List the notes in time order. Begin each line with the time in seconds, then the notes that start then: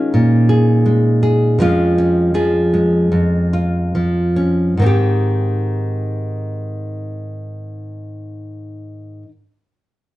Already playing: D#3 G#3 C#4 F4
0.14 A#2
0.49 G#4
0.86 G#3
1.23 G#4
1.59 F2 F3 G#3 C#4 F4
1.98 C#4
2.34 F3 G#4
2.74 G#3
3.12 F2
3.53 F4
3.95 F3
4.36 C#4
4.77 G#2 D#3
4.82 C4 D#4
4.86 G4